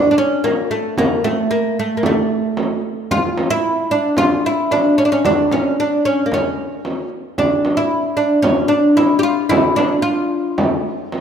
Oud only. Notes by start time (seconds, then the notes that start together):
0.11 D4
0.18 C#4
0.44 A#3
0.71 A3
0.98 A#3
1.24 A3
1.51 A#3
1.79 A3
1.97 A#3
2.06 A3
3.11 F4
3.50 E4
3.91 D4
4.18 F4
4.46 E4
4.72 D4
4.98 C#4
5.05 D4
5.12 C#4
5.25 D4
5.52 C#4
5.80 D4
6.05 C#4
6.26 A#3
6.34 C#4
7.38 D4
7.77 E4
8.17 D4
8.42 C#4
8.68 D4
8.97 E4
9.19 G4
9.23 F4
9.49 E4
9.76 D4
10.02 F4